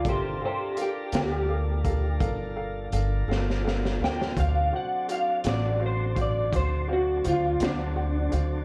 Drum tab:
HH |x---x-x---x-x---x-------|x---x-x---x-x---x-x---x-|
SD |------o-----------oooooo|------o-----------o-----|
BD |o---------o-o-----------|o---------o-o-----------|